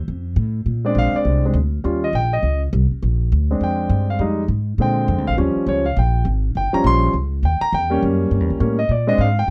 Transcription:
0.08 0.36 F2 medium
0.36 0.65 A2 loud
0.66 0.94 A#2 medium
0.85 1.44 G#3 soft
0.85 1.44 C4 soft
0.85 1.44 D4 medium
0.85 0.96 D5 medium
0.95 1.13 A#1 medium
0.95 1.15 F5 medium
1.14 1.43 D5 medium
1.14 muted upright bass stroke soft
1.25 1.53 C2 medium
1.45 1.55 G#3 soft
1.45 1.55 C4 soft
1.45 1.55 D4 soft
1.54 1.83 D2 medium
1.84 2.12 D#2 medium
1.84 2.06 G3 medium
1.84 2.06 C#4 soft
1.84 2.07 F4 medium
2.04 2.14 D#5 medium
2.13 2.42 A#1 medium
2.13 2.33 G5 medium
2.33 2.60 D#5 medium
2.43 2.72 C#2 medium
2.73 2.90 C2 loud
2.91 muted upright bass stroke soft
3.02 3.31 A#1 medium
3.32 3.60 D2 medium
3.51 4.17 G#3 soft
3.51 4.17 C4 soft
3.51 4.18 D4 soft
3.61 3.89 F2 medium
3.61 4.07 G5 medium
3.90 4.18 G2 medium
4.10 4.20 F5 medium
4.19 4.48 F2 medium
4.19 4.41 G3 soft
4.19 4.42 G#3 soft
4.19 4.42 D#4 medium
4.48 4.77 G#2 medium
4.78 5.07 A#2 medium
4.78 5.35 D3 soft
4.78 5.35 G#3 soft
4.78 5.36 C4 medium
4.78 5.25 G5 medium
5.08 5.18 F2 medium
5.18 5.28 D2 medium
5.27 5.37 A#1 medium
5.27 5.34 F5 medium
5.37 5.55 D#2 medium
5.37 5.83 F3 soft
5.37 5.83 G3 soft
5.37 5.83 C#4 medium
5.56 muted upright bass stroke soft
5.67 5.95 C#2 medium
5.67 5.86 C#5 medium
5.86 5.96 F5 medium
5.97 6.24 A#1 medium
5.97 6.25 G5 medium
6.25 6.54 G#1 medium
6.55 6.72 G1 medium
6.55 6.74 G5 medium
6.73 7.12 F3 medium
6.73 7.12 G3 medium
6.73 7.12 C#4 medium
6.73 6.85 A#5 medium
6.73 muted upright bass stroke soft
6.84 7.13 A#1 medium
6.84 7.13 C6 loud
7.14 7.42 C#2 medium
7.43 7.60 D#2 medium
7.43 7.62 G5 medium
7.61 7.72 A#5 medium
7.61 muted upright bass stroke soft
7.72 8.01 E2 medium
7.72 8.01 G5 medium
7.90 8.58 G3 medium
7.90 8.59 A#3 soft
7.90 8.59 C#4 medium
8.03 8.30 F#2 medium
8.31 8.40 G2 medium
8.40 8.50 E2 medium
8.50 8.60 C#2 medium
8.60 8.88 A2 medium
8.60 8.77 G3 soft
8.60 8.77 A#3 soft
8.60 8.77 C#4 medium
8.79 8.90 D#5 medium
8.89 9.18 A#2 medium
8.89 9.09 D5 medium
9.07 9.25 G#3 medium
9.07 9.25 C4 soft
9.07 9.26 D4 medium
9.07 9.19 D#5 medium
9.18 9.47 G#2 medium
9.18 9.38 F5 medium
9.39 9.49 G5 medium

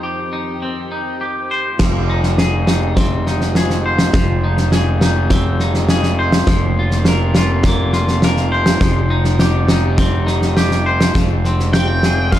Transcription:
0.00 1.77 F2 soft
0.00 1.77 D#3 soft
0.00 0.92 F3 soft
0.00 1.76 C4 soft
0.00 0.32 D#4 soft
0.00 1.77 G4 medium
0.00 1.20 G4 soft
0.00 1.51 C5 soft
0.33 0.91 D#4 soft
0.62 1.80 C4 soft
0.92 1.80 D#4 soft
1.21 1.80 G4 soft
1.51 1.80 C5 soft
1.79 4.11 F1 medium
1.79 6.45 D#3 medium
1.79 3.30 F3 medium
1.79 6.45 G#3 soft
1.79 8.78 F4 medium
1.79 kick medium
1.79 snare medium
1.79 crash medium
2.10 2.67 D#4 medium
2.23 snare soft
2.38 3.56 G#4 medium
2.38 snare medium
2.67 3.26 D#4 soft
2.67 snare medium
2.97 5.31 C4 medium
2.97 kick medium
2.97 snare medium
3.27 4.43 D#4 medium
3.27 snare soft
3.41 snare soft
3.55 4.71 G#4 medium
3.55 snare medium
3.70 snare soft
3.86 6.18 C5 medium
3.99 snare medium
4.14 6.44 F1 medium
4.14 5.61 F3 medium
4.14 kick medium
4.14 snare medium
4.44 5.01 D#4 medium
4.58 snare soft
4.72 5.89 G#4 medium
4.72 snare medium
5.01 5.60 D#4 medium
5.01 snare medium
5.30 7.11 C4 medium
5.30 kick medium
5.30 snare medium
5.60 6.48 D#4 medium
5.60 snare soft
5.74 snare soft
5.89 6.48 G#4 medium
5.89 snare medium
6.03 snare soft
6.19 7.11 C5 medium
6.32 snare medium
6.47 8.77 F1 medium
6.47 11.11 C3 medium
6.47 7.94 F3 medium
6.47 8.79 A#3 medium
6.47 kick medium
6.47 snare medium
6.79 7.35 F4 medium
6.91 snare soft
7.05 8.23 A#4 medium
7.05 snare medium
7.35 7.92 F4 medium
7.35 snare medium
7.64 8.83 A#3 medium
7.64 kick medium
7.64 snare medium
7.93 8.82 F4 medium
7.93 snare soft
8.08 snare soft
8.22 8.82 A#4 medium
8.22 snare medium
8.37 snare soft
8.52 10.86 C5 medium
8.66 snare medium
8.80 11.11 F1 medium
8.80 10.27 F3 medium
8.80 11.12 G3 medium
8.80 11.13 D#4 medium
8.80 kick medium
8.80 snare medium
9.10 9.68 D#4 medium
9.25 snare soft
9.39 10.56 G4 medium
9.39 snare medium
9.69 10.26 D#4 medium
9.69 snare medium
9.98 11.16 C4 medium
9.98 kick medium
9.98 snare medium
10.27 11.15 D#4 medium
10.27 snare soft
10.42 snare soft
10.57 11.16 G4 medium
10.57 snare medium
10.71 snare soft
10.86 11.16 C5 medium
11.01 snare medium
11.14 12.39 F1 medium
11.14 12.39 D#3 medium
11.14 12.39 F3 soft
11.14 12.39 G#3 medium
11.14 12.39 F4 medium
11.14 kick medium
11.14 snare medium
11.45 11.75 C4 medium
11.45 snare soft
11.60 snare soft
11.73 12.33 C4 medium
11.73 12.32 G5 medium
11.73 snare medium
12.03 12.39 G#4 soft
12.03 snare medium
12.32 12.39 C4 medium
12.32 12.39 F5 medium
12.32 kick medium
12.32 snare medium

